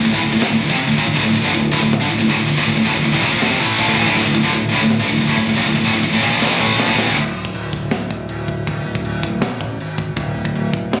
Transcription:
0.00 D2 A2
0.05 D1 D2 A2, kick, crash
0.09 A2
0.14 A1 A2 E3, kick
0.18 D2 A2
0.23 D1 D2 A2, kick
0.32 D1 D2 A2, kick
0.36 D#2
0.40 D#1 D#2 A#2, snare, crash
0.46 D2 A2
0.50 D1 D2 A2, kick
0.55 D2 A2
0.60 D1 D2 A2, kick
0.65 F2 C3
0.69 F1 F2 C3, kick
0.76 muted distorted electric guitar stroke, crash
0.80 muted picked electric bass stroke, muted distorted electric guitar stroke
0.87 D1 D2 A2, kick
0.91 D#2 A#2
0.98 D#1 D#2 A#2, kick
1.06 D1 D2 A2, kick
1.15 D1 D2 A2, kick, crash
1.26 D1 D2 A2, kick
1.35 D1 D2 A2, kick
1.44 G1 G2 D3, kick
1.53 D1 D2 A2, kick, crash
1.72 D1 D2 A2, kick
1.80 D1 D2 A2, kick
1.93 snare, crash
2.00 G1 G2 D3, kick
2.09 D1 D2 A2, kick
2.18 D1 D2 A2, kick
2.29 D1 D2 A2, kick, crash
2.38 D1 D2 A2, kick
2.46 D1 D2 A2, kick
2.57 D#1 D#2 A#2, kick
2.67 D1 D2 A2, kick, crash
2.76 D1 D2 A2, kick
2.85 D1 D2 A2, kick
2.94 D1 D2 A2, kick
3.04 D1 D2 A2, kick, crash
3.13 A1 A2 E3, kick
3.22 D#1 D#2 A#2, kick
3.32 A#1 A#2 F3, kick
3.41 D1 D2 A2, snare, crash
3.50 F1 F2 C3, kick
3.60 A1 A2 E3 A3, kick
3.79 A#1 A#2 F3, kick, crash
3.88 D1 D2 A2, kick
3.97 A1 A2 E3, kick
4.07 D1 D2 A2, kick
4.16 D1 D2 A2, kick, crash
4.26 D1 D2 A2, kick
4.34 D1 D2 A2, kick
4.43 G1 G2 D3, kick
4.53 D1 D2 A2, kick, crash
4.72 D1 D2 A2, kick
4.81 D1 D2 A2, kick
4.90 snare, crash
5.00 G1 G2 D3, kick
5.09 D1 D2 A2, kick
5.16 D1 D2 A2, kick
5.21 D2 A2
5.28 D1 D2 A2, kick, crash
5.38 D1 D2 A2, kick
5.47 D1 D2 A2, kick
5.53 D#1 D#2 A#2, kick
5.58 D#2 A#2
5.66 D1 D2 A2, kick, crash
5.75 D1 D2 A2, kick
5.81 D2, kick
5.85 D1 D2 A2
5.91 D1 D2 A2, kick
5.96 D2 A2
6.03 D1 D2 A2, kick, crash
6.12 A1 A2 E3, kick
6.22 D#1 D#2 A#2, kick
6.27 A#1 A#2
6.31 F3
6.37 D1 D2 A2
6.42 snare
6.47 F1 F2 C3
6.59 A1 A2 E3 A3, kick
6.75 A#1
6.80 A#2 F3, snare
6.86 D1 D2 A2
6.96 A1 A2 E3, snare
7.03 D1 D2 A2
7.07 A2
7.17 D1, kick, crash, china
7.34 D1
7.45 kick
7.54 D1, china
7.73 D1, kick
7.90 D1, snare, china
8.10 D1, kick
8.29 D1, china
8.48 kick
8.67 D1, kick, china
8.84 D1
8.95 kick
9.02 D1, china
9.22 D1, kick
9.40 A#1, snare, china
9.61 A1, kick
9.77 G#1, china
9.98 kick
10.16 D1, kick, china
10.34 D1
10.45 kick
10.54 D1, china
10.72 D1, kick
10.91 D1, snare, china

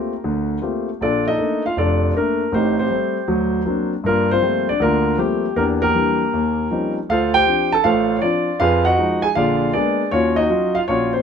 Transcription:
Already playing: A3 A#3 C4 D4 F4 G4 A#4
0.24 D2 D3
0.62 A3 A#3 C4 F4 G4
1.01 A#1 D4 F4 A4 D5
1.28 D#4 A4 D#5
1.38 A3 A#3 D4
1.66 F4 F5
1.77 F1 D4 F4 A4 D5
2.14 A3 A#3 D4 A#4
2.52 A1 A2 C4 D#4 G4 C5
2.79 C4 G4 C5
2.90 G3 A3 C4
3.28 D2 F#3
3.66 F#3 A#3 C4 D4
4.04 G2 D4 F4 A#4
4.08 A#3
4.31 C4 F4 C5
4.42 F3 G3 A3 A#3 C4
4.69 D4 D5
4.80 D2 D3 A#3 D4 F4 A#4
5.18 F3 G3 A3 A#3 C4 G4
5.56 E2 A#3 D4 G4 A#4
5.82 A#3 G4 A#4
5.94 E3 G3 D4
6.33 D#2
6.71 F3 G3 C4 C#4 D#4
7.09 D2 F4 A4 C5 F5
7.34 G4 C5 G5
7.46 F3 C4 D4
7.72 A4 A5
7.84 A1 A2 F4 A4 C5 F5
8.17 C#5
8.22 F3 C4 D4 F4 D5
8.60 F2 F4 G#4 B4 F5
8.85 F#4 D#5 F#5
8.98 F3 G#3 D#4
9.22 G#4 G#5
9.35 A#1 D3 F4 G#4 D5 F5
9.73 G#3 A#3 B3 D4 G#4 D5
10.11 D#2 C#4 F4 F#4 C#5
10.36 D#4 F#4 D#5
10.50 F#3 C#4 D#4 F4
10.75 F4 F5
10.88 A#1 C#4 F4 F#4 C#5
11.13 C4 C5

